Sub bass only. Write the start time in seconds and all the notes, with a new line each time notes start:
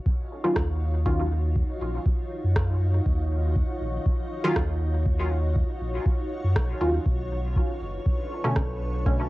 0.56 D#2
1.81 A#1
2.44 F#2
3.06 D#2
3.81 A#1
4.56 D#2
5.81 A#1
6.44 F#2
6.56 A#1
6.81 D#2
7.06 B1
7.81 F#1
8.56 B1